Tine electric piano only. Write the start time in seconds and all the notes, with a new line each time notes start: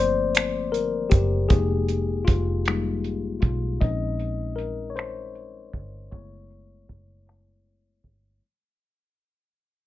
Already playing: F3 A3 A#3 C4 C5 D5
0.72 A#4
1.10 G4
1.49 G#3 A#3 D#4 G4 G#4
2.25 F4
2.67 G3 G#3 A#3 D#4
3.41 F4
3.81 G#3 C4 C#4 D#4 D#5
4.56 A#4
4.90 C#5
4.96 C5
6.11 G#3 A3 B3 E4 C#5